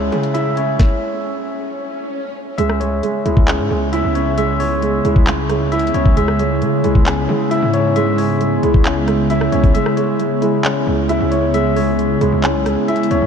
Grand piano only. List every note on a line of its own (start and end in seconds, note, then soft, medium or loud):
0.00 0.12 G#3 medium
0.12 1.24 G#3 medium
0.34 1.46 E4 loud
0.57 1.69 C#4 medium
2.58 2.79 G#3 medium
2.81 3.02 G#3 medium
3.03 3.24 G#3 medium
3.26 3.47 G#3 medium
3.48 3.69 G#3 medium
3.71 4.36 G#3 medium
3.93 5.05 E4 loud
4.15 5.27 C#4 medium
4.37 4.58 G#3 medium
4.59 4.80 G#3 medium
4.82 5.03 G#3 medium
5.04 5.26 G#3 medium
5.27 5.48 G#3 medium
5.50 6.14 G#3 medium
5.72 6.17 E4 loud
5.95 6.17 C#4 medium
6.16 6.38 G#3 medium
6.39 6.60 G#3 medium
6.62 6.82 G#3 medium
6.84 7.05 G#3 medium
7.06 7.27 G#3 medium
7.29 7.94 G#3 medium
7.51 8.63 E4 loud
7.73 8.85 C#4 medium
7.96 8.17 G#3 medium
8.19 8.39 G#3 medium
8.41 8.62 G#3 medium
8.63 8.84 G#3 medium
8.85 9.06 G#3 medium
9.08 9.74 G#3 medium
9.31 9.75 E4 loud
9.53 9.75 C#4 medium
9.75 9.96 G#3 medium
9.98 10.18 G#3 medium
10.20 10.41 G#3 medium
10.42 10.63 G#3 medium
10.65 10.86 G#3 medium
10.87 11.52 G#3 medium
11.09 12.21 E4 loud
11.32 12.44 C#4 medium
11.54 11.74 G#3 medium
11.76 11.97 G#3 medium
11.98 12.19 G#3 medium
12.21 12.42 G#3 medium
12.44 12.64 G#3 medium
12.66 13.27 G#3 medium
12.89 13.27 E4 loud
13.11 13.27 C#4 medium